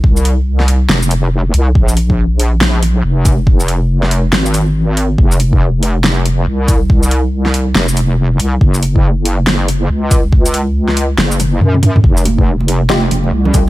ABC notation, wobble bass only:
X:1
M:4/4
L:1/8
Q:"Swing 16ths" 1/4=140
K:Fm
V:1 name="Wobble bass" clef=bass
C,,4 F,,,3 C,, | B,,,6 F,,,2- | F,,,4 A,,,4 | F,,,6 C,,2- |
C,,4 F,,,3 C,, | _G,,,6 D,,2- | D,,4 _G,,,2 _G,,2 | F,,,6 C,,2 |]